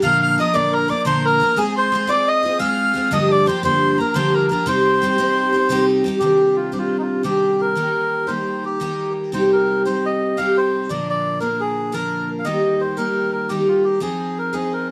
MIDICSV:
0, 0, Header, 1, 4, 480
1, 0, Start_track
1, 0, Key_signature, -3, "minor"
1, 0, Tempo, 343053
1, 46, Time_signature, 9, 3, 24, 8
1, 8686, Tempo, 346821
1, 20733, End_track
2, 0, Start_track
2, 0, Title_t, "Tin whistle"
2, 0, Program_c, 0, 75
2, 35, Note_on_c, 0, 89, 88
2, 288, Note_off_c, 0, 89, 0
2, 297, Note_on_c, 0, 89, 91
2, 515, Note_off_c, 0, 89, 0
2, 544, Note_on_c, 0, 87, 80
2, 755, Note_on_c, 0, 86, 83
2, 776, Note_off_c, 0, 87, 0
2, 1034, Note_on_c, 0, 82, 76
2, 1055, Note_off_c, 0, 86, 0
2, 1255, Note_on_c, 0, 86, 83
2, 1276, Note_off_c, 0, 82, 0
2, 1468, Note_off_c, 0, 86, 0
2, 1476, Note_on_c, 0, 84, 84
2, 1754, Note_on_c, 0, 82, 77
2, 1775, Note_off_c, 0, 84, 0
2, 2221, Note_on_c, 0, 80, 71
2, 2242, Note_off_c, 0, 82, 0
2, 2450, Note_off_c, 0, 80, 0
2, 2458, Note_on_c, 0, 84, 76
2, 2925, Note_on_c, 0, 86, 85
2, 2946, Note_off_c, 0, 84, 0
2, 3203, Note_on_c, 0, 87, 90
2, 3224, Note_off_c, 0, 86, 0
2, 3644, Note_on_c, 0, 89, 96
2, 3665, Note_off_c, 0, 87, 0
2, 4361, Note_off_c, 0, 89, 0
2, 4372, Note_on_c, 0, 87, 76
2, 4640, Note_on_c, 0, 86, 78
2, 4661, Note_off_c, 0, 87, 0
2, 4861, Note_on_c, 0, 84, 74
2, 4882, Note_off_c, 0, 86, 0
2, 5083, Note_off_c, 0, 84, 0
2, 5096, Note_on_c, 0, 84, 90
2, 5576, Note_on_c, 0, 82, 77
2, 5597, Note_off_c, 0, 84, 0
2, 5808, Note_on_c, 0, 84, 76
2, 5829, Note_off_c, 0, 82, 0
2, 6081, Note_on_c, 0, 82, 71
2, 6102, Note_off_c, 0, 84, 0
2, 6282, Note_off_c, 0, 82, 0
2, 6291, Note_on_c, 0, 82, 59
2, 6531, Note_on_c, 0, 84, 66
2, 6552, Note_off_c, 0, 82, 0
2, 8238, Note_off_c, 0, 84, 0
2, 20733, End_track
3, 0, Start_track
3, 0, Title_t, "Melodica"
3, 0, Program_c, 1, 22
3, 46, Note_on_c, 1, 77, 105
3, 293, Note_off_c, 1, 77, 0
3, 314, Note_on_c, 1, 77, 88
3, 546, Note_off_c, 1, 77, 0
3, 556, Note_on_c, 1, 75, 89
3, 764, Note_on_c, 1, 74, 105
3, 779, Note_off_c, 1, 75, 0
3, 1017, Note_on_c, 1, 70, 81
3, 1039, Note_off_c, 1, 74, 0
3, 1234, Note_off_c, 1, 70, 0
3, 1258, Note_on_c, 1, 74, 88
3, 1468, Note_off_c, 1, 74, 0
3, 1488, Note_on_c, 1, 72, 87
3, 1755, Note_on_c, 1, 70, 94
3, 1760, Note_off_c, 1, 72, 0
3, 2200, Note_on_c, 1, 68, 89
3, 2218, Note_off_c, 1, 70, 0
3, 2449, Note_off_c, 1, 68, 0
3, 2485, Note_on_c, 1, 72, 92
3, 2926, Note_on_c, 1, 74, 106
3, 2942, Note_off_c, 1, 72, 0
3, 3184, Note_on_c, 1, 75, 103
3, 3198, Note_off_c, 1, 74, 0
3, 3606, Note_off_c, 1, 75, 0
3, 3625, Note_on_c, 1, 77, 77
3, 4370, Note_on_c, 1, 75, 84
3, 4373, Note_off_c, 1, 77, 0
3, 4613, Note_off_c, 1, 75, 0
3, 4644, Note_on_c, 1, 74, 99
3, 4846, Note_off_c, 1, 74, 0
3, 4858, Note_on_c, 1, 72, 82
3, 5074, Note_off_c, 1, 72, 0
3, 5095, Note_on_c, 1, 72, 99
3, 5595, Note_off_c, 1, 72, 0
3, 5604, Note_on_c, 1, 70, 73
3, 5808, Note_on_c, 1, 72, 85
3, 5821, Note_off_c, 1, 70, 0
3, 6078, Note_off_c, 1, 72, 0
3, 6084, Note_on_c, 1, 70, 71
3, 6294, Note_off_c, 1, 70, 0
3, 6315, Note_on_c, 1, 70, 67
3, 6537, Note_off_c, 1, 70, 0
3, 6551, Note_on_c, 1, 72, 95
3, 8192, Note_off_c, 1, 72, 0
3, 8666, Note_on_c, 1, 67, 79
3, 9171, Note_on_c, 1, 65, 70
3, 9184, Note_off_c, 1, 67, 0
3, 9407, Note_off_c, 1, 65, 0
3, 9408, Note_on_c, 1, 67, 47
3, 9482, Note_on_c, 1, 65, 76
3, 9483, Note_off_c, 1, 67, 0
3, 9742, Note_off_c, 1, 65, 0
3, 9756, Note_on_c, 1, 63, 50
3, 9801, Note_on_c, 1, 65, 63
3, 9816, Note_off_c, 1, 63, 0
3, 10091, Note_off_c, 1, 65, 0
3, 10119, Note_on_c, 1, 67, 71
3, 10626, Note_on_c, 1, 70, 86
3, 10629, Note_off_c, 1, 67, 0
3, 11545, Note_on_c, 1, 72, 75
3, 11595, Note_off_c, 1, 70, 0
3, 12062, Note_off_c, 1, 72, 0
3, 12066, Note_on_c, 1, 67, 76
3, 12731, Note_off_c, 1, 67, 0
3, 13016, Note_on_c, 1, 72, 69
3, 13258, Note_off_c, 1, 72, 0
3, 13279, Note_on_c, 1, 70, 85
3, 13696, Note_off_c, 1, 70, 0
3, 13736, Note_on_c, 1, 72, 78
3, 14005, Note_off_c, 1, 72, 0
3, 14010, Note_on_c, 1, 75, 80
3, 14450, Note_on_c, 1, 77, 87
3, 14467, Note_off_c, 1, 75, 0
3, 14722, Note_off_c, 1, 77, 0
3, 14726, Note_on_c, 1, 72, 73
3, 15176, Note_on_c, 1, 74, 69
3, 15185, Note_off_c, 1, 72, 0
3, 15431, Note_off_c, 1, 74, 0
3, 15452, Note_on_c, 1, 74, 81
3, 15863, Note_off_c, 1, 74, 0
3, 15874, Note_on_c, 1, 70, 73
3, 16152, Note_on_c, 1, 68, 75
3, 16154, Note_off_c, 1, 70, 0
3, 16612, Note_on_c, 1, 70, 65
3, 16618, Note_off_c, 1, 68, 0
3, 17120, Note_off_c, 1, 70, 0
3, 17244, Note_on_c, 1, 77, 62
3, 17320, Note_on_c, 1, 75, 83
3, 17330, Note_off_c, 1, 77, 0
3, 17819, Note_on_c, 1, 72, 74
3, 17831, Note_off_c, 1, 75, 0
3, 18047, Note_on_c, 1, 70, 77
3, 18052, Note_off_c, 1, 72, 0
3, 18515, Note_off_c, 1, 70, 0
3, 18535, Note_on_c, 1, 70, 71
3, 18761, Note_on_c, 1, 67, 61
3, 18770, Note_off_c, 1, 70, 0
3, 19028, Note_on_c, 1, 65, 61
3, 19038, Note_off_c, 1, 67, 0
3, 19253, Note_on_c, 1, 67, 65
3, 19264, Note_off_c, 1, 65, 0
3, 19489, Note_off_c, 1, 67, 0
3, 19494, Note_on_c, 1, 68, 65
3, 19998, Note_off_c, 1, 68, 0
3, 20008, Note_on_c, 1, 70, 71
3, 20211, Note_on_c, 1, 68, 75
3, 20226, Note_off_c, 1, 70, 0
3, 20484, Note_off_c, 1, 68, 0
3, 20485, Note_on_c, 1, 70, 64
3, 20690, Note_off_c, 1, 70, 0
3, 20733, End_track
4, 0, Start_track
4, 0, Title_t, "Twelve-string acoustic guitar"
4, 0, Program_c, 2, 25
4, 28, Note_on_c, 2, 46, 69
4, 32, Note_on_c, 2, 50, 70
4, 39, Note_on_c, 2, 53, 78
4, 48, Note_on_c, 2, 58, 80
4, 52, Note_on_c, 2, 62, 70
4, 63, Note_on_c, 2, 70, 72
4, 522, Note_off_c, 2, 53, 0
4, 525, Note_off_c, 2, 58, 0
4, 528, Note_on_c, 2, 53, 68
4, 529, Note_off_c, 2, 46, 0
4, 531, Note_off_c, 2, 50, 0
4, 541, Note_off_c, 2, 62, 0
4, 541, Note_on_c, 2, 58, 57
4, 547, Note_off_c, 2, 70, 0
4, 557, Note_on_c, 2, 62, 65
4, 569, Note_on_c, 2, 70, 65
4, 733, Note_off_c, 2, 70, 0
4, 738, Note_off_c, 2, 62, 0
4, 743, Note_off_c, 2, 58, 0
4, 750, Note_on_c, 2, 70, 60
4, 753, Note_off_c, 2, 53, 0
4, 755, Note_on_c, 2, 62, 65
4, 760, Note_on_c, 2, 58, 49
4, 770, Note_on_c, 2, 53, 61
4, 774, Note_on_c, 2, 50, 66
4, 776, Note_on_c, 2, 46, 58
4, 1216, Note_off_c, 2, 70, 0
4, 1233, Note_on_c, 2, 70, 60
4, 1238, Note_off_c, 2, 62, 0
4, 1255, Note_off_c, 2, 58, 0
4, 1255, Note_on_c, 2, 62, 46
4, 1262, Note_off_c, 2, 50, 0
4, 1263, Note_off_c, 2, 46, 0
4, 1273, Note_on_c, 2, 58, 49
4, 1280, Note_off_c, 2, 53, 0
4, 1286, Note_on_c, 2, 53, 44
4, 1467, Note_on_c, 2, 46, 75
4, 1470, Note_off_c, 2, 53, 0
4, 1471, Note_off_c, 2, 70, 0
4, 1475, Note_on_c, 2, 50, 73
4, 1478, Note_off_c, 2, 58, 0
4, 1482, Note_off_c, 2, 62, 0
4, 1486, Note_on_c, 2, 53, 72
4, 1495, Note_on_c, 2, 58, 70
4, 1498, Note_on_c, 2, 62, 70
4, 1502, Note_on_c, 2, 70, 81
4, 1951, Note_off_c, 2, 53, 0
4, 1956, Note_off_c, 2, 58, 0
4, 1957, Note_on_c, 2, 53, 57
4, 1968, Note_off_c, 2, 46, 0
4, 1972, Note_off_c, 2, 50, 0
4, 1973, Note_on_c, 2, 58, 60
4, 1984, Note_off_c, 2, 62, 0
4, 1985, Note_off_c, 2, 70, 0
4, 1998, Note_on_c, 2, 62, 56
4, 2007, Note_on_c, 2, 70, 52
4, 2181, Note_off_c, 2, 53, 0
4, 2187, Note_on_c, 2, 56, 62
4, 2191, Note_off_c, 2, 58, 0
4, 2197, Note_on_c, 2, 60, 75
4, 2204, Note_off_c, 2, 62, 0
4, 2209, Note_on_c, 2, 65, 76
4, 2214, Note_off_c, 2, 70, 0
4, 2219, Note_on_c, 2, 68, 78
4, 2668, Note_off_c, 2, 56, 0
4, 2685, Note_on_c, 2, 56, 66
4, 2692, Note_off_c, 2, 60, 0
4, 2703, Note_off_c, 2, 68, 0
4, 2708, Note_on_c, 2, 60, 63
4, 2722, Note_off_c, 2, 65, 0
4, 2727, Note_on_c, 2, 65, 71
4, 2735, Note_on_c, 2, 68, 75
4, 2884, Note_off_c, 2, 68, 0
4, 2901, Note_off_c, 2, 65, 0
4, 2901, Note_on_c, 2, 68, 70
4, 2911, Note_off_c, 2, 60, 0
4, 2916, Note_off_c, 2, 56, 0
4, 2918, Note_on_c, 2, 65, 70
4, 2928, Note_on_c, 2, 60, 58
4, 2939, Note_on_c, 2, 56, 56
4, 3382, Note_off_c, 2, 68, 0
4, 3399, Note_on_c, 2, 68, 48
4, 3417, Note_off_c, 2, 60, 0
4, 3423, Note_off_c, 2, 56, 0
4, 3427, Note_off_c, 2, 65, 0
4, 3433, Note_on_c, 2, 65, 50
4, 3444, Note_on_c, 2, 60, 44
4, 3620, Note_off_c, 2, 60, 0
4, 3629, Note_on_c, 2, 56, 75
4, 3632, Note_off_c, 2, 68, 0
4, 3634, Note_off_c, 2, 65, 0
4, 3636, Note_on_c, 2, 60, 72
4, 3650, Note_on_c, 2, 65, 80
4, 3660, Note_on_c, 2, 68, 68
4, 4091, Note_off_c, 2, 56, 0
4, 4108, Note_on_c, 2, 56, 53
4, 4111, Note_off_c, 2, 60, 0
4, 4128, Note_on_c, 2, 60, 58
4, 4130, Note_off_c, 2, 65, 0
4, 4143, Note_off_c, 2, 68, 0
4, 4147, Note_on_c, 2, 65, 58
4, 4162, Note_on_c, 2, 68, 62
4, 4347, Note_off_c, 2, 56, 0
4, 4350, Note_on_c, 2, 43, 74
4, 4356, Note_off_c, 2, 60, 0
4, 4357, Note_on_c, 2, 50, 81
4, 4366, Note_off_c, 2, 65, 0
4, 4368, Note_on_c, 2, 53, 74
4, 4374, Note_off_c, 2, 68, 0
4, 4374, Note_on_c, 2, 58, 79
4, 4375, Note_on_c, 2, 62, 76
4, 4386, Note_on_c, 2, 67, 68
4, 4825, Note_off_c, 2, 53, 0
4, 4840, Note_off_c, 2, 58, 0
4, 4842, Note_on_c, 2, 53, 63
4, 4848, Note_off_c, 2, 43, 0
4, 4851, Note_off_c, 2, 50, 0
4, 4857, Note_on_c, 2, 58, 69
4, 4860, Note_off_c, 2, 62, 0
4, 4878, Note_on_c, 2, 62, 67
4, 4883, Note_off_c, 2, 67, 0
4, 4889, Note_on_c, 2, 67, 80
4, 5062, Note_off_c, 2, 67, 0
4, 5063, Note_off_c, 2, 62, 0
4, 5073, Note_off_c, 2, 53, 0
4, 5076, Note_off_c, 2, 58, 0
4, 5079, Note_on_c, 2, 67, 66
4, 5080, Note_on_c, 2, 62, 72
4, 5093, Note_on_c, 2, 58, 54
4, 5094, Note_on_c, 2, 53, 62
4, 5108, Note_on_c, 2, 50, 58
4, 5109, Note_on_c, 2, 43, 59
4, 5560, Note_off_c, 2, 67, 0
4, 5566, Note_on_c, 2, 67, 48
4, 5568, Note_off_c, 2, 62, 0
4, 5579, Note_off_c, 2, 58, 0
4, 5580, Note_off_c, 2, 53, 0
4, 5585, Note_on_c, 2, 62, 44
4, 5587, Note_off_c, 2, 43, 0
4, 5587, Note_off_c, 2, 50, 0
4, 5603, Note_on_c, 2, 58, 49
4, 5614, Note_on_c, 2, 53, 39
4, 5794, Note_on_c, 2, 43, 69
4, 5795, Note_off_c, 2, 53, 0
4, 5796, Note_off_c, 2, 67, 0
4, 5804, Note_off_c, 2, 58, 0
4, 5805, Note_off_c, 2, 62, 0
4, 5809, Note_on_c, 2, 50, 65
4, 5812, Note_on_c, 2, 53, 70
4, 5821, Note_on_c, 2, 58, 92
4, 5821, Note_on_c, 2, 62, 83
4, 5831, Note_on_c, 2, 67, 80
4, 6268, Note_off_c, 2, 53, 0
4, 6285, Note_on_c, 2, 53, 60
4, 6290, Note_off_c, 2, 43, 0
4, 6290, Note_off_c, 2, 58, 0
4, 6298, Note_off_c, 2, 50, 0
4, 6304, Note_off_c, 2, 62, 0
4, 6306, Note_on_c, 2, 58, 59
4, 6319, Note_on_c, 2, 62, 62
4, 6327, Note_off_c, 2, 67, 0
4, 6337, Note_on_c, 2, 67, 58
4, 6513, Note_off_c, 2, 53, 0
4, 6516, Note_on_c, 2, 48, 67
4, 6519, Note_on_c, 2, 55, 69
4, 6524, Note_off_c, 2, 58, 0
4, 6529, Note_off_c, 2, 62, 0
4, 6530, Note_on_c, 2, 60, 84
4, 6534, Note_off_c, 2, 67, 0
4, 6535, Note_on_c, 2, 63, 80
4, 6550, Note_on_c, 2, 67, 73
4, 7013, Note_off_c, 2, 48, 0
4, 7013, Note_off_c, 2, 55, 0
4, 7018, Note_on_c, 2, 55, 66
4, 7029, Note_off_c, 2, 60, 0
4, 7035, Note_on_c, 2, 60, 72
4, 7044, Note_off_c, 2, 63, 0
4, 7049, Note_on_c, 2, 63, 75
4, 7061, Note_off_c, 2, 67, 0
4, 7067, Note_on_c, 2, 67, 63
4, 7233, Note_off_c, 2, 67, 0
4, 7239, Note_off_c, 2, 63, 0
4, 7243, Note_off_c, 2, 55, 0
4, 7250, Note_on_c, 2, 67, 76
4, 7252, Note_off_c, 2, 60, 0
4, 7256, Note_on_c, 2, 63, 69
4, 7270, Note_on_c, 2, 60, 63
4, 7274, Note_on_c, 2, 55, 64
4, 7281, Note_on_c, 2, 48, 62
4, 7727, Note_off_c, 2, 67, 0
4, 7732, Note_on_c, 2, 67, 54
4, 7750, Note_off_c, 2, 63, 0
4, 7756, Note_off_c, 2, 48, 0
4, 7756, Note_on_c, 2, 63, 49
4, 7773, Note_off_c, 2, 60, 0
4, 7779, Note_on_c, 2, 60, 45
4, 7960, Note_on_c, 2, 48, 68
4, 7962, Note_off_c, 2, 67, 0
4, 7964, Note_off_c, 2, 60, 0
4, 7968, Note_off_c, 2, 55, 0
4, 7973, Note_off_c, 2, 63, 0
4, 7973, Note_on_c, 2, 55, 81
4, 7981, Note_on_c, 2, 60, 87
4, 7994, Note_on_c, 2, 63, 94
4, 8003, Note_on_c, 2, 67, 99
4, 8447, Note_off_c, 2, 55, 0
4, 8452, Note_on_c, 2, 55, 63
4, 8458, Note_off_c, 2, 48, 0
4, 8458, Note_off_c, 2, 60, 0
4, 8475, Note_on_c, 2, 60, 65
4, 8482, Note_off_c, 2, 63, 0
4, 8487, Note_on_c, 2, 63, 58
4, 8500, Note_off_c, 2, 67, 0
4, 8506, Note_on_c, 2, 67, 74
4, 8675, Note_off_c, 2, 55, 0
4, 8682, Note_off_c, 2, 60, 0
4, 8682, Note_on_c, 2, 51, 56
4, 8683, Note_on_c, 2, 48, 59
4, 8692, Note_off_c, 2, 67, 0
4, 8692, Note_on_c, 2, 55, 56
4, 8699, Note_on_c, 2, 60, 65
4, 8701, Note_off_c, 2, 63, 0
4, 8707, Note_on_c, 2, 62, 61
4, 8709, Note_on_c, 2, 67, 64
4, 9384, Note_off_c, 2, 62, 0
4, 9388, Note_off_c, 2, 67, 0
4, 9393, Note_on_c, 2, 67, 50
4, 9394, Note_off_c, 2, 60, 0
4, 9401, Note_on_c, 2, 62, 48
4, 9403, Note_off_c, 2, 48, 0
4, 9405, Note_off_c, 2, 55, 0
4, 9410, Note_off_c, 2, 51, 0
4, 9410, Note_on_c, 2, 55, 44
4, 9411, Note_on_c, 2, 60, 44
4, 9416, Note_on_c, 2, 51, 46
4, 9423, Note_on_c, 2, 48, 37
4, 10086, Note_off_c, 2, 48, 0
4, 10102, Note_on_c, 2, 48, 58
4, 10107, Note_off_c, 2, 60, 0
4, 10111, Note_off_c, 2, 51, 0
4, 10111, Note_off_c, 2, 55, 0
4, 10112, Note_off_c, 2, 62, 0
4, 10117, Note_on_c, 2, 51, 62
4, 10117, Note_on_c, 2, 55, 56
4, 10123, Note_on_c, 2, 60, 61
4, 10129, Note_on_c, 2, 62, 60
4, 10134, Note_off_c, 2, 67, 0
4, 10139, Note_on_c, 2, 67, 62
4, 10821, Note_off_c, 2, 51, 0
4, 10827, Note_on_c, 2, 51, 56
4, 10832, Note_off_c, 2, 48, 0
4, 10835, Note_off_c, 2, 55, 0
4, 10840, Note_on_c, 2, 55, 55
4, 10842, Note_off_c, 2, 60, 0
4, 10845, Note_off_c, 2, 62, 0
4, 10848, Note_on_c, 2, 58, 53
4, 10851, Note_on_c, 2, 63, 64
4, 10854, Note_off_c, 2, 67, 0
4, 10859, Note_on_c, 2, 67, 61
4, 11535, Note_off_c, 2, 67, 0
4, 11541, Note_on_c, 2, 67, 55
4, 11547, Note_off_c, 2, 58, 0
4, 11553, Note_off_c, 2, 63, 0
4, 11558, Note_on_c, 2, 63, 43
4, 11563, Note_on_c, 2, 58, 47
4, 11566, Note_off_c, 2, 55, 0
4, 11572, Note_on_c, 2, 55, 46
4, 11577, Note_off_c, 2, 51, 0
4, 11583, Note_on_c, 2, 51, 43
4, 12266, Note_off_c, 2, 51, 0
4, 12271, Note_on_c, 2, 51, 60
4, 12276, Note_off_c, 2, 58, 0
4, 12279, Note_off_c, 2, 55, 0
4, 12285, Note_on_c, 2, 55, 67
4, 12293, Note_on_c, 2, 58, 71
4, 12298, Note_off_c, 2, 63, 0
4, 12302, Note_off_c, 2, 67, 0
4, 12303, Note_on_c, 2, 63, 58
4, 12307, Note_on_c, 2, 67, 68
4, 12990, Note_off_c, 2, 51, 0
4, 12993, Note_off_c, 2, 55, 0
4, 12995, Note_on_c, 2, 48, 67
4, 13003, Note_off_c, 2, 63, 0
4, 13007, Note_off_c, 2, 58, 0
4, 13009, Note_on_c, 2, 55, 60
4, 13011, Note_off_c, 2, 67, 0
4, 13017, Note_on_c, 2, 60, 62
4, 13020, Note_on_c, 2, 63, 66
4, 13028, Note_on_c, 2, 67, 66
4, 13716, Note_off_c, 2, 67, 0
4, 13719, Note_off_c, 2, 48, 0
4, 13726, Note_off_c, 2, 55, 0
4, 13727, Note_off_c, 2, 63, 0
4, 13730, Note_off_c, 2, 60, 0
4, 13733, Note_on_c, 2, 67, 57
4, 13744, Note_on_c, 2, 63, 50
4, 13745, Note_on_c, 2, 60, 50
4, 13756, Note_on_c, 2, 55, 47
4, 13765, Note_on_c, 2, 48, 44
4, 14432, Note_off_c, 2, 48, 0
4, 14440, Note_off_c, 2, 55, 0
4, 14447, Note_off_c, 2, 60, 0
4, 14448, Note_off_c, 2, 67, 0
4, 14448, Note_on_c, 2, 48, 56
4, 14454, Note_off_c, 2, 63, 0
4, 14457, Note_on_c, 2, 55, 68
4, 14463, Note_on_c, 2, 60, 55
4, 14472, Note_on_c, 2, 63, 62
4, 14478, Note_on_c, 2, 67, 67
4, 15166, Note_off_c, 2, 48, 0
4, 15169, Note_on_c, 2, 46, 55
4, 15170, Note_off_c, 2, 55, 0
4, 15173, Note_off_c, 2, 60, 0
4, 15178, Note_off_c, 2, 63, 0
4, 15180, Note_on_c, 2, 50, 54
4, 15181, Note_off_c, 2, 67, 0
4, 15183, Note_on_c, 2, 53, 66
4, 15191, Note_on_c, 2, 58, 67
4, 15192, Note_on_c, 2, 62, 68
4, 15198, Note_on_c, 2, 70, 55
4, 15872, Note_off_c, 2, 70, 0
4, 15875, Note_off_c, 2, 62, 0
4, 15877, Note_on_c, 2, 70, 52
4, 15882, Note_off_c, 2, 53, 0
4, 15886, Note_off_c, 2, 46, 0
4, 15888, Note_off_c, 2, 50, 0
4, 15892, Note_on_c, 2, 62, 49
4, 15893, Note_off_c, 2, 58, 0
4, 15898, Note_on_c, 2, 53, 41
4, 15898, Note_on_c, 2, 58, 44
4, 15904, Note_on_c, 2, 50, 44
4, 15910, Note_on_c, 2, 46, 49
4, 16577, Note_off_c, 2, 46, 0
4, 16582, Note_off_c, 2, 50, 0
4, 16587, Note_off_c, 2, 53, 0
4, 16594, Note_on_c, 2, 46, 59
4, 16598, Note_off_c, 2, 62, 0
4, 16599, Note_on_c, 2, 50, 56
4, 16604, Note_on_c, 2, 53, 55
4, 16615, Note_off_c, 2, 58, 0
4, 16615, Note_on_c, 2, 62, 67
4, 16619, Note_off_c, 2, 70, 0
4, 16620, Note_on_c, 2, 58, 59
4, 16625, Note_on_c, 2, 70, 78
4, 17315, Note_off_c, 2, 50, 0
4, 17319, Note_off_c, 2, 46, 0
4, 17321, Note_on_c, 2, 51, 69
4, 17324, Note_off_c, 2, 53, 0
4, 17324, Note_off_c, 2, 58, 0
4, 17330, Note_off_c, 2, 62, 0
4, 17335, Note_off_c, 2, 70, 0
4, 17336, Note_on_c, 2, 55, 62
4, 17341, Note_on_c, 2, 58, 59
4, 17346, Note_on_c, 2, 63, 63
4, 17353, Note_on_c, 2, 67, 60
4, 18027, Note_off_c, 2, 67, 0
4, 18043, Note_on_c, 2, 67, 57
4, 18050, Note_off_c, 2, 58, 0
4, 18050, Note_off_c, 2, 63, 0
4, 18051, Note_off_c, 2, 55, 0
4, 18056, Note_on_c, 2, 63, 53
4, 18066, Note_on_c, 2, 58, 52
4, 18073, Note_on_c, 2, 55, 47
4, 18079, Note_off_c, 2, 51, 0
4, 18084, Note_on_c, 2, 51, 47
4, 18757, Note_off_c, 2, 55, 0
4, 18761, Note_off_c, 2, 51, 0
4, 18763, Note_off_c, 2, 58, 0
4, 18764, Note_off_c, 2, 67, 0
4, 18767, Note_on_c, 2, 51, 55
4, 18774, Note_on_c, 2, 55, 60
4, 18779, Note_on_c, 2, 58, 64
4, 18788, Note_off_c, 2, 63, 0
4, 18793, Note_on_c, 2, 63, 69
4, 18802, Note_on_c, 2, 67, 57
4, 19469, Note_off_c, 2, 55, 0
4, 19474, Note_on_c, 2, 53, 68
4, 19481, Note_off_c, 2, 58, 0
4, 19481, Note_off_c, 2, 63, 0
4, 19486, Note_off_c, 2, 51, 0
4, 19487, Note_on_c, 2, 60, 68
4, 19498, Note_on_c, 2, 63, 67
4, 19504, Note_off_c, 2, 67, 0
4, 19510, Note_on_c, 2, 68, 61
4, 20186, Note_off_c, 2, 68, 0
4, 20195, Note_off_c, 2, 63, 0
4, 20202, Note_on_c, 2, 68, 58
4, 20212, Note_on_c, 2, 63, 54
4, 20215, Note_off_c, 2, 60, 0
4, 20220, Note_on_c, 2, 60, 47
4, 20224, Note_off_c, 2, 53, 0
4, 20230, Note_on_c, 2, 53, 47
4, 20733, Note_off_c, 2, 53, 0
4, 20733, Note_off_c, 2, 60, 0
4, 20733, Note_off_c, 2, 63, 0
4, 20733, Note_off_c, 2, 68, 0
4, 20733, End_track
0, 0, End_of_file